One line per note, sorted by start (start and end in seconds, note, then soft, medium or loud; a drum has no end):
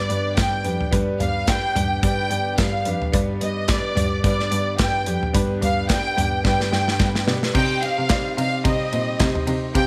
0.00 0.37 G2 medium
0.00 0.92 G2 medium
0.00 0.38 D3 medium
0.00 0.36 G3 medium
0.00 0.08 B3 loud
0.00 0.37 B3 medium
0.00 0.09 D4 medium
0.00 0.38 D4 medium
0.00 0.10 G4 medium
0.00 0.10 B4 loud
0.00 0.39 B4 medium
0.00 0.34 D5 medium
0.08 0.33 G2 medium
0.08 0.31 B3 medium
0.08 0.32 D4 medium
0.08 0.32 G4 medium
0.08 0.32 B4 medium
0.08 closed hi-hat medium
0.36 0.60 G2 medium
0.36 0.65 G3 medium
0.36 0.59 B3 medium
0.36 0.66 B3 medium
0.36 0.59 D4 medium
0.36 0.65 D4 medium
0.36 0.60 G4 medium
0.36 0.63 B4 medium
0.36 0.60 D5 medium
0.36 0.81 G5 medium
0.36 kick loud
0.36 snare loud
0.36 closed hi-hat medium
0.64 0.88 F2 medium
0.64 0.87 B3 medium
0.64 0.93 B3 soft
0.64 0.87 D4 medium
0.64 0.93 D4 soft
0.64 0.87 G4 medium
0.64 0.93 B4 medium
0.64 0.88 B4 medium
0.64 closed hi-hat medium
0.68 0.92 G3 soft
0.81 floor tom medium
0.91 1.20 G2 medium
0.91 1.71 G2 medium
0.91 1.15 G2 medium
0.91 1.21 D3 medium
0.91 1.21 G3 medium
0.91 1.14 B3 loud
0.91 1.21 B3 medium
0.91 1.14 D4 medium
0.91 1.20 D4 medium
0.91 1.15 G4 medium
0.91 1.15 B4 loud
0.91 1.18 B4 medium
0.91 kick medium
0.91 closed hi-hat medium
1.19 1.56 G2 medium
1.19 1.46 G3 soft
1.19 1.42 B3 medium
1.19 1.47 B3 soft
1.19 1.42 D4 medium
1.19 1.48 D4 medium
1.19 1.42 G4 medium
1.19 1.48 B4 medium
1.19 1.43 D5 medium
1.19 1.47 F5 medium
1.19 closed hi-hat medium
1.19 floor tom medium
1.47 1.75 G3 medium
1.47 1.69 B3 medium
1.47 1.76 B3 medium
1.47 1.70 D4 medium
1.47 1.75 D4 medium
1.47 1.70 G4 medium
1.47 1.70 D5 medium
1.47 2.02 G5 loud
1.47 kick loud
1.47 snare loud
1.47 closed hi-hat medium
1.51 1.73 B4 medium
1.74 1.98 G2 medium
1.74 2.02 G3 soft
1.74 1.97 B3 medium
1.74 2.03 B3 soft
1.74 1.97 D4 medium
1.74 2.03 D4 medium
1.74 1.98 G4 medium
1.74 2.03 B4 medium
1.74 1.98 B4 medium
1.74 closed hi-hat medium
1.74 floor tom medium
2.02 2.58 G2 medium
2.02 2.26 G2 medium
2.02 2.58 D3 medium
2.02 2.57 G3 medium
2.02 2.25 B3 medium
2.02 2.57 B3 loud
2.02 2.25 D4 medium
2.02 2.59 D4 loud
2.02 2.25 G4 medium
2.02 2.59 B4 loud
2.02 2.26 D5 medium
2.02 2.55 G5 loud
2.02 kick medium
2.02 closed hi-hat medium
2.30 2.53 G2 medium
2.30 2.52 B3 medium
2.30 2.53 D4 medium
2.30 2.53 G4 medium
2.30 2.53 D5 medium
2.30 closed hi-hat medium
2.57 2.81 G2 medium
2.57 2.86 G3 medium
2.57 2.80 B3 medium
2.57 2.86 B3 medium
2.57 2.80 D4 medium
2.57 2.85 D4 medium
2.57 2.81 G4 medium
2.57 2.84 B4 medium
2.57 2.81 D5 medium
2.57 3.02 F5 medium
2.57 kick loud
2.57 snare loud
2.57 closed hi-hat medium
2.85 3.08 F2 medium
2.85 3.13 G3 soft
2.85 3.08 B3 medium
2.85 3.13 B3 medium
2.85 3.08 D4 medium
2.85 3.14 D4 soft
2.85 3.08 G4 medium
2.85 3.13 B4 medium
2.85 3.08 B4 medium
2.85 closed hi-hat medium
3.02 floor tom medium
3.12 3.41 G2 medium
3.12 3.92 G2 medium
3.12 3.36 G2 loud
3.12 3.41 D3 medium
3.12 3.41 G3 medium
3.12 3.35 B3 loud
3.12 3.42 B3 medium
3.12 3.35 D4 loud
3.12 3.41 D4 medium
3.12 3.36 G4 loud
3.12 3.39 B4 medium
3.12 3.36 D5 loud
3.12 kick medium
3.12 closed hi-hat medium
3.40 3.76 G2 medium
3.40 3.63 B3 medium
3.40 3.68 B3 soft
3.40 3.63 D4 medium
3.40 3.69 D4 medium
3.40 3.63 G4 medium
3.40 3.68 B4 medium
3.40 3.64 B4 medium
3.40 3.67 D#5 medium
3.40 closed hi-hat medium
3.44 3.67 G3 soft
3.68 3.96 G3 medium
3.68 3.90 B3 medium
3.68 3.97 B3 medium
3.68 3.91 D4 medium
3.68 3.96 D4 medium
3.68 3.91 G4 medium
3.68 3.91 B4 medium
3.68 3.94 B4 medium
3.68 4.23 D5 medium
3.68 kick loud
3.68 snare loud
3.68 clap medium
3.68 closed hi-hat medium
3.95 4.19 G2 medium
3.95 4.24 G3 soft
3.95 4.18 B3 medium
3.95 4.24 B3 soft
3.95 4.18 D4 medium
3.95 4.24 D4 medium
3.95 4.19 G4 medium
3.95 4.23 B4 medium
3.95 4.19 D5 medium
3.95 closed hi-hat medium
3.95 floor tom medium
4.23 4.79 G2 medium
4.23 4.47 G2 medium
4.23 4.79 D3 medium
4.23 4.78 G3 loud
4.23 4.46 B3 medium
4.23 4.79 B3 medium
4.23 4.46 D4 medium
4.23 4.80 D4 loud
4.23 4.46 G4 medium
4.23 4.47 B4 loud
4.23 4.80 B4 medium
4.23 4.75 D5 medium
4.23 kick loud
4.23 closed hi-hat medium
4.40 snare soft
4.51 4.74 G2 medium
4.51 4.73 B3 medium
4.51 4.74 D4 medium
4.51 4.74 G4 medium
4.51 4.74 D5 medium
4.51 closed hi-hat medium
4.78 5.02 G2 medium
4.78 5.07 G3 medium
4.78 5.01 B3 medium
4.78 5.07 B3 medium
4.78 5.01 D4 medium
4.78 5.06 D4 medium
4.78 5.01 G4 medium
4.78 5.02 B4 medium
4.78 5.19 G5 medium
4.78 kick loud
4.78 snare loud
4.78 clap medium
4.78 closed hi-hat medium
4.82 5.05 B4 medium
5.06 5.29 F2 medium
5.06 5.34 G3 soft
5.06 5.28 B3 medium
5.06 5.34 B3 soft
5.06 5.29 D4 medium
5.06 5.34 D4 medium
5.06 5.29 G4 medium
5.06 5.34 B4 medium
5.06 5.29 D5 medium
5.06 closed hi-hat medium
5.23 floor tom medium
5.33 5.62 G2 medium
5.33 6.13 G2 medium
5.33 5.57 G2 loud
5.33 5.62 D3 medium
5.33 5.62 G3 medium
5.33 5.56 B3 loud
5.33 5.63 B3 medium
5.33 5.56 D4 loud
5.33 5.62 D4 loud
5.33 5.56 G4 loud
5.33 5.57 B4 loud
5.33 5.60 B4 medium
5.33 kick loud
5.33 closed hi-hat medium
5.61 5.97 G2 medium
5.61 5.87 G3 soft
5.61 5.83 B3 medium
5.61 5.89 B3 medium
5.61 5.84 D4 medium
5.61 5.90 D4 medium
5.61 5.84 G4 medium
5.61 5.89 B4 medium
5.61 5.84 B4 medium
5.61 5.88 F5 medium
5.61 closed hi-hat medium
5.61 floor tom medium
5.89 6.17 G3 medium
5.89 6.11 B3 medium
5.89 6.17 B3 medium
5.89 6.12 D4 medium
5.89 6.17 D4 medium
5.89 6.12 G4 medium
5.89 6.15 B4 medium
5.89 6.12 D5 medium
5.89 6.41 G5 loud
5.89 kick loud
5.89 snare loud
5.89 clap loud
5.89 closed hi-hat medium
6.16 6.39 G2 medium
6.16 6.44 G3 soft
6.16 6.39 B3 medium
6.16 6.44 B3 medium
6.16 6.39 D4 medium
6.16 6.45 D4 medium
6.16 6.39 G4 medium
6.16 6.44 B4 medium
6.16 6.40 B4 medium
6.16 closed hi-hat medium
6.16 floor tom medium
6.44 6.99 G2 medium
6.44 6.67 G2 loud
6.44 7.00 D3 medium
6.44 6.99 G3 medium
6.44 6.66 B3 medium
6.44 6.99 B3 medium
6.44 6.67 D4 medium
6.44 7.00 D4 loud
6.44 6.67 G4 medium
6.44 6.67 B4 loud
6.44 7.01 B4 medium
6.44 7.24 G5 medium
6.44 kick loud
6.44 snare medium
6.60 snare medium
6.71 6.95 G2 medium
6.71 6.94 B3 medium
6.71 6.94 D4 medium
6.71 6.94 G4 medium
6.71 6.95 B4 medium
6.71 snare medium
6.88 snare medium
6.99 7.22 G2 loud
6.99 7.27 G3 medium
6.99 7.22 B3 medium
6.99 7.28 B3 medium
6.99 7.22 D4 medium
6.99 7.27 D4 medium
6.99 7.22 G4 medium
6.99 7.22 B4 medium
6.99 7.26 B4 medium
6.99 kick loud
6.99 snare medium
6.99 clap medium
7.15 snare medium
7.27 7.50 B2 loud
7.27 7.54 G3 soft
7.27 7.49 B3 medium
7.27 7.55 B3 medium
7.27 7.49 D4 medium
7.27 7.55 D4 medium
7.27 7.50 G4 medium
7.27 7.55 B4 medium
7.27 7.50 D5 loud
7.27 snare loud
7.43 snare medium
7.54 7.82 C3 medium
7.54 7.77 C3 loud
7.54 8.33 C3 medium
7.54 7.83 G3 medium
7.54 7.76 C4 medium
7.54 7.83 C4 loud
7.54 7.77 D#4 medium
7.54 7.83 D#4 loud
7.54 7.77 G4 medium
7.54 7.81 G4 medium
7.54 7.77 C5 medium
7.54 7.77 D#5 loud
7.54 7.80 G5 loud
7.54 kick loud
7.54 crash medium
7.82 8.04 C4 medium
7.82 8.09 C4 soft
7.82 8.04 D#4 medium
7.82 8.11 D#4 medium
7.82 8.10 G4 medium
7.82 8.05 G4 medium
7.82 8.05 C5 medium
7.82 8.05 D#5 medium
7.82 8.37 F5 loud
7.82 ride medium
7.98 8.21 C3 medium
8.09 8.37 G3 medium
8.09 8.31 C4 medium
8.09 8.38 C4 medium
8.09 8.32 D#4 medium
8.09 8.38 D#4 medium
8.09 8.32 G4 medium
8.09 8.36 G4 medium
8.09 8.32 C5 medium
8.09 8.32 D5 loud
8.09 kick loud
8.09 snare loud
8.09 clap loud
8.09 ride medium
8.37 8.60 C3 loud
8.37 8.59 C4 medium
8.37 8.65 C4 soft
8.37 8.59 D#4 medium
8.37 8.65 D#4 medium
8.37 8.65 G4 medium
8.37 8.60 G4 medium
8.37 8.60 C5 medium
8.37 8.60 D#5 medium
8.37 8.64 F5 medium
8.37 ride medium
8.65 9.20 C3 medium
8.65 8.87 C3 loud
8.65 9.18 G3 medium
8.65 8.87 C4 medium
8.65 9.20 C4 loud
8.65 8.87 D#4 medium
8.65 9.21 D#4 medium
8.65 8.87 G4 medium
8.65 9.21 G4 loud
8.65 8.87 C5 medium
8.65 9.44 D#5 medium
8.65 8.88 D#5 medium
8.65 kick loud
8.65 ride medium
8.92 9.15 A#2 medium
8.92 9.14 C4 medium
8.92 9.14 D#4 medium
8.92 9.15 G4 medium
8.92 9.15 C5 medium
8.92 9.15 D#5 medium
8.92 ride medium
9.19 9.43 C3 medium
9.19 9.47 G3 medium
9.19 9.42 C4 loud
9.19 9.48 C4 medium
9.19 9.42 D#4 medium
9.19 9.48 D#4 medium
9.19 9.42 G4 medium
9.19 9.46 G4 medium
9.19 9.42 C5 medium
9.19 9.43 D#5 loud
9.19 kick loud
9.19 snare loud
9.19 clap medium
9.19 ride medium
9.35 floor tom medium
9.47 9.70 C3 loud
9.47 9.69 C4 medium
9.47 9.75 C4 medium
9.47 9.69 D#4 medium
9.47 9.75 D#4 medium
9.47 9.75 G4 medium
9.47 9.70 G4 medium
9.47 9.70 C5 medium
9.47 9.70 D#5 medium
9.47 ride medium
9.74 9.87 C3 medium
9.74 9.87 C3 loud
9.74 9.87 C3 medium
9.74 9.87 G3 medium
9.74 9.87 C4 medium
9.74 9.87 D#4 medium
9.74 9.87 G4 medium
9.74 9.87 C5 medium
9.74 9.87 F5 loud
9.74 9.87 G5 loud
9.74 kick loud
9.74 ride medium